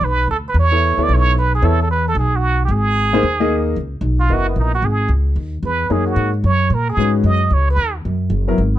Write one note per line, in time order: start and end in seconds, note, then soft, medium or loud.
0.01 0.26 B1 medium
0.01 0.29 B4 medium
0.28 0.53 D2 medium
0.28 0.37 A4 medium
0.48 0.56 B4 medium
0.54 0.95 E2 medium
0.59 1.05 C#5 loud
0.72 0.97 B3 medium
0.72 0.97 E4 soft
0.72 0.97 A4 soft
0.72 0.97 C#5 medium
0.98 1.07 D2 medium
0.98 1.33 B3 medium
0.98 1.33 E4 medium
0.98 1.34 A4 medium
0.98 1.34 C#5 medium
1.03 1.15 D5 medium
1.09 1.59 B1 medium
1.13 1.38 C#5 loud
1.38 1.52 B4 loud
1.55 1.66 G#4 medium
1.62 2.13 E2 medium
1.62 1.77 B3 medium
1.62 1.77 E4 medium
1.62 1.77 A4 medium
1.62 1.79 A4 loud
1.62 1.77 C#5 medium
1.82 1.90 A4 medium
1.91 2.05 B4 medium
2.08 2.16 A4 medium
2.15 2.66 B1 medium
2.15 2.37 G#4 medium
2.35 2.64 F#4 medium
2.65 3.19 G#1 medium
2.65 2.73 G4 medium
2.71 3.67 G#4 medium
3.13 3.22 A#3 medium
3.13 3.22 D#4 medium
3.13 3.22 G#4 medium
3.13 3.22 C5 medium
3.23 3.74 D#2 medium
3.40 3.75 A#3 medium
3.40 3.75 D#4 medium
3.40 3.75 G#4 medium
3.40 3.75 D#5 medium
3.76 4.00 C#2 medium
4.01 4.28 B1 medium
4.20 4.34 F4 medium
4.29 4.55 F#1 medium
4.29 4.70 B3 soft
4.29 4.69 E4 soft
4.29 4.69 A#4 soft
4.29 4.70 D#5 medium
4.33 4.47 F#4 medium
4.49 4.61 B3 soft
4.56 4.82 A#1 medium
4.56 4.74 D#4 medium
4.75 4.86 F#4 medium
4.82 5.08 G#1 medium
4.82 5.11 G#4 medium
5.08 5.35 C#2 medium
5.36 5.62 D#2 medium
5.63 5.89 E2 medium
5.63 5.93 B4 medium
5.90 6.15 F#2 medium
5.90 6.30 A#3 medium
5.90 6.30 D#4 medium
5.90 6.30 G#4 medium
5.90 6.06 G#4 medium
5.90 6.30 C#5 medium
6.06 6.31 F#4 medium
6.16 6.42 G#2 medium
6.44 6.70 F#2 medium
6.44 6.75 C#5 medium
6.70 6.96 A#2 medium
6.70 6.88 A#4 medium
6.89 7.13 G#4 medium
6.97 7.23 G#2 medium
6.97 7.37 G#3 medium
6.97 7.37 C#4 soft
6.97 7.38 F#4 soft
6.97 7.38 B4 medium
7.24 7.50 F#2 medium
7.24 7.55 D#5 medium
7.50 7.76 C#2 medium
7.50 7.68 C#5 medium
7.70 7.94 B4 medium
7.77 8.03 D#2 medium
8.05 8.29 F#2 medium
8.30 8.56 F#1 medium
8.48 8.57 F#3 medium
8.48 8.57 B3 medium
8.48 8.57 E4 medium
8.48 8.57 A#4 medium
8.58 8.79 G#1 medium